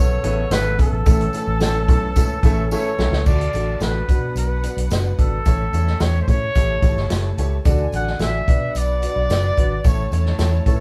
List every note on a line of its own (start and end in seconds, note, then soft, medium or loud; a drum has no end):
0.00 0.17 B1 medium
0.00 1.05 C#3 medium
0.00 0.13 B3 medium
0.00 1.04 B3 medium
0.00 0.13 C#4 medium
0.00 0.13 E4 medium
0.00 0.13 A4 medium
0.00 3.22 A4 medium
0.00 0.54 C#5 loud
0.00 0.75 C#5 loud
0.00 0.75 C#6 loud
0.23 0.44 A1 medium
0.23 0.40 B3 loud
0.23 0.40 C#4 medium
0.23 0.41 E4 medium
0.23 0.41 A4 loud
0.23 closed hi-hat medium
0.23 tambourine medium
0.51 0.81 G#1 loud
0.51 0.68 B3 loud
0.51 0.68 C#4 medium
0.51 0.68 E4 medium
0.51 0.68 A4 loud
0.51 0.80 B4 loud
0.51 snare loud
0.51 closed hi-hat loud
0.51 tambourine loud
0.78 0.95 B3 medium
0.78 0.95 C#4 medium
0.78 0.95 E4 medium
0.78 0.96 A4 medium
0.78 2.68 A4 loud
0.78 kick medium
0.78 closed hi-hat medium
0.78 tambourine soft
0.92 1.02 A1 medium
1.06 1.26 A1 loud
1.06 1.85 A2 medium
1.06 3.24 E3 medium
1.06 1.23 A3 medium
1.06 1.23 C#4 medium
1.06 3.24 C#4 medium
1.06 1.23 E4 medium
1.06 2.95 A4 medium
1.06 1.23 A4 loud
1.06 2.95 A5 loud
1.06 kick loud
1.06 closed hi-hat medium
1.06 tambourine medium
1.21 closed hi-hat soft
1.33 1.50 A3 medium
1.33 1.50 C#4 medium
1.33 1.50 E4 medium
1.33 1.51 A4 medium
1.33 closed hi-hat medium
1.33 tambourine medium
1.47 1.89 A1 loud
1.60 1.77 A3 medium
1.60 1.78 C#4 medium
1.60 1.78 E4 medium
1.60 1.78 A4 medium
1.60 snare loud
1.60 closed hi-hat medium
1.60 tambourine medium
1.88 2.16 B1 medium
1.88 2.05 A3 medium
1.88 2.06 C#4 medium
1.88 2.06 E4 medium
1.88 2.06 A4 medium
1.88 kick loud
1.88 closed hi-hat medium
1.88 tambourine medium
2.16 2.36 C#2 medium
2.16 2.33 A3 medium
2.16 2.33 C#4 medium
2.16 2.33 E4 medium
2.16 2.33 A4 loud
2.16 kick medium
2.16 closed hi-hat medium
2.16 tambourine loud
2.43 2.73 A1 medium
2.43 2.61 A3 loud
2.43 2.61 C#4 medium
2.43 2.61 E4 loud
2.43 2.61 A4 loud
2.43 kick loud
2.43 closed hi-hat medium
2.43 tambourine medium
2.71 2.88 A3 loud
2.71 2.88 C#4 loud
2.71 2.88 E4 loud
2.71 2.89 A4 loud
2.71 3.28 C#5 loud
2.71 tambourine loud
2.98 3.09 B1 medium
2.98 3.16 A3 medium
2.98 3.16 C#4 medium
2.98 3.16 E4 medium
2.98 3.16 A4 loud
2.98 snare medium
2.98 tambourine soft
3.12 3.22 C#2 medium
3.12 snare medium
3.26 3.46 D2 loud
3.26 4.05 D3 medium
3.26 3.43 A3 medium
3.26 3.43 D4 medium
3.26 4.07 F#4 medium
3.26 3.44 F#4 medium
3.26 3.44 A4 medium
3.26 3.84 D5 loud
3.26 4.07 D5 medium
3.26 4.07 A5 medium
3.26 kick loud
3.26 crash medium
3.26 tambourine medium
3.41 closed hi-hat soft
3.53 3.74 A1 medium
3.53 3.70 A3 medium
3.53 3.71 D4 medium
3.53 3.71 F#4 medium
3.53 3.71 A4 medium
3.53 closed hi-hat medium
3.53 tambourine medium
3.80 4.01 A1 medium
3.80 3.98 A3 medium
3.80 3.98 D4 medium
3.80 3.98 F#4 medium
3.80 3.98 A4 medium
3.80 4.37 B4 medium
3.80 snare loud
3.80 closed hi-hat medium
3.80 tambourine medium
4.08 4.87 B2 medium
4.08 4.29 B2 medium
4.08 4.52 B3 medium
4.08 4.52 D4 medium
4.08 5.43 D4 medium
4.08 4.52 F#4 medium
4.08 4.53 B4 medium
4.08 5.43 B4 medium
4.08 5.43 F#5 medium
4.08 kick loud
4.08 closed hi-hat medium
4.08 tambourine medium
4.35 4.66 B1 medium
4.35 4.88 B4 medium
4.35 closed hi-hat medium
4.35 tambourine medium
4.63 4.80 B3 medium
4.63 4.80 D4 medium
4.63 4.80 F#4 medium
4.63 4.80 B4 medium
4.63 closed hi-hat medium
4.63 tambourine medium
4.77 4.87 B1 medium
4.77 closed hi-hat medium
4.90 5.11 F#1 loud
4.90 5.07 B3 medium
4.90 5.08 D4 medium
4.90 5.08 F#4 medium
4.90 5.08 B4 medium
4.90 snare loud
4.90 closed hi-hat medium
4.90 tambourine loud
5.18 5.39 G#1 medium
5.18 5.35 B3 medium
5.18 5.35 D4 medium
5.18 5.35 F#4 medium
5.18 6.03 A4 medium
5.18 5.35 B4 medium
5.18 kick medium
5.18 closed hi-hat medium
5.18 tambourine soft
5.45 5.66 A1 loud
5.45 6.24 A2 medium
5.45 5.62 C#4 medium
5.45 6.54 C#4 medium
5.45 5.63 E4 medium
5.45 5.63 A4 medium
5.45 6.54 A4 medium
5.45 5.63 C#5 loud
5.45 6.54 E5 medium
5.45 kick medium
5.45 closed hi-hat medium
5.45 tambourine medium
5.73 5.93 E2 medium
5.73 5.90 C#4 medium
5.73 5.90 E4 medium
5.73 5.90 A4 medium
5.73 5.90 C#5 medium
5.73 closed hi-hat medium
5.73 tambourine medium
5.87 snare soft
6.00 6.21 E2 medium
6.00 6.17 C#4 medium
6.00 6.17 E4 medium
6.00 6.17 A4 medium
6.00 6.17 C#5 medium
6.00 6.22 C#5 loud
6.00 snare loud
6.00 closed hi-hat medium
6.00 tambourine medium
6.22 6.30 C5 medium
6.28 6.48 A2 loud
6.28 6.45 C#4 medium
6.28 6.45 E4 medium
6.28 6.45 A4 medium
6.28 6.45 C#5 medium
6.28 7.38 C#5 loud
6.28 kick medium
6.28 closed hi-hat medium
6.28 tambourine medium
6.55 6.76 A1 medium
6.55 7.34 A2 medium
6.55 6.72 E4 medium
6.55 7.63 E4 medium
6.55 6.72 G4 medium
6.55 6.72 A4 medium
6.55 6.73 C#5 loud
6.55 7.63 A5 medium
6.55 kick medium
6.55 closed hi-hat medium
6.55 tambourine medium
6.82 6.93 A1 medium
6.82 6.99 E4 medium
6.82 6.99 G4 medium
6.82 7.00 A4 medium
6.82 7.00 C#5 medium
6.82 kick loud
6.82 closed hi-hat medium
6.82 tambourine medium
6.96 7.06 G1 medium
6.96 snare soft
7.10 7.31 F#1 medium
7.10 7.27 E4 medium
7.10 7.27 G4 medium
7.10 7.27 A4 medium
7.10 7.27 C#5 medium
7.10 snare loud
7.10 closed hi-hat loud
7.10 tambourine medium
7.38 7.58 C#2 medium
7.38 7.55 E4 medium
7.38 7.55 G4 medium
7.38 7.55 A4 medium
7.38 7.55 C#5 loud
7.38 closed hi-hat medium
7.38 tambourine soft
7.65 7.85 D2 loud
7.65 8.44 D3 medium
7.65 7.82 D4 loud
7.65 8.46 D4 medium
7.65 7.82 F#4 medium
7.65 8.46 A4 medium
7.65 7.82 A4 loud
7.65 7.83 D5 loud
7.65 8.46 G#5 medium
7.65 kick loud
7.65 closed hi-hat medium
7.65 tambourine medium
7.92 8.13 A1 medium
7.92 8.09 D4 medium
7.92 8.10 F#4 medium
7.92 8.10 A4 medium
7.92 8.10 D5 medium
7.92 8.20 F#5 medium
7.92 closed hi-hat medium
7.92 tambourine medium
8.07 snare soft
8.19 8.40 A1 medium
8.19 8.37 D4 medium
8.19 8.37 F#4 medium
8.19 8.37 A4 medium
8.19 8.37 D5 medium
8.19 8.79 E5 loud
8.19 snare loud
8.19 closed hi-hat medium
8.19 tambourine medium
8.47 9.26 B2 medium
8.47 8.68 B2 loud
8.47 8.91 D4 medium
8.47 9.82 D4 medium
8.47 8.91 F#4 medium
8.47 9.82 B4 medium
8.47 8.92 B4 medium
8.47 8.92 D5 medium
8.47 9.82 F#5 medium
8.47 kick loud
8.47 closed hi-hat medium
8.47 tambourine soft
8.75 9.05 B1 medium
8.75 9.88 D5 loud
8.75 closed hi-hat medium
8.75 tambourine medium
9.02 9.19 D4 medium
9.02 9.19 F#4 medium
9.02 9.19 B4 medium
9.02 9.19 D5 medium
9.02 closed hi-hat medium
9.02 tambourine medium
9.16 9.26 B1 medium
9.29 9.50 F#1 loud
9.29 9.46 D4 medium
9.29 9.47 F#4 medium
9.29 9.47 B4 medium
9.29 9.47 D5 medium
9.29 snare loud
9.29 closed hi-hat loud
9.29 tambourine loud
9.57 9.78 G#1 medium
9.57 9.73 D4 medium
9.57 9.74 F#4 medium
9.57 9.74 B4 medium
9.57 9.74 D5 medium
9.57 kick medium
9.57 closed hi-hat medium
9.57 tambourine soft
9.84 10.04 A1 loud
9.84 10.62 A2 medium
9.84 10.01 C#4 medium
9.84 10.01 E4 medium
9.84 10.80 E4 medium
9.84 10.01 A4 medium
9.84 10.01 C#5 loud
9.84 10.80 C#5 medium
9.84 10.13 C#5 medium
9.84 10.80 A5 medium
9.84 kick loud
9.84 closed hi-hat medium
9.84 tambourine medium
10.11 10.32 E2 medium
10.11 10.28 C#4 medium
10.11 10.28 E4 medium
10.11 10.28 A4 medium
10.11 10.29 C#5 medium
10.11 10.80 C#5 medium
10.11 closed hi-hat medium
10.11 tambourine medium
10.26 snare soft
10.38 10.59 E2 medium
10.38 10.55 C#4 medium
10.38 10.55 E4 medium
10.38 10.56 A4 medium
10.38 10.56 C#5 medium
10.38 snare loud
10.38 closed hi-hat medium
10.38 tambourine medium
10.66 10.80 A2 loud
10.66 10.79 E3 medium
10.66 10.80 C#4 medium
10.66 10.78 C#4 medium
10.66 10.80 E4 medium
10.66 10.80 A4 medium
10.66 10.79 A4 medium
10.66 10.80 C#5 medium
10.66 kick medium
10.66 closed hi-hat medium
10.66 tambourine medium